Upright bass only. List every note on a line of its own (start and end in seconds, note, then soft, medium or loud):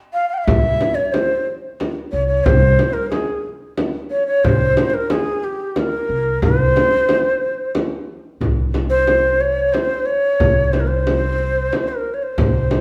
0.47 0.77 C2 medium
2.13 2.43 C2 medium
2.45 2.76 C2 loud
4.44 4.74 C2 medium
6.09 6.40 C2 medium
6.43 6.73 C2 loud
8.41 9.69 C2 medium
10.40 11.68 C2 medium
12.38 12.81 C2 medium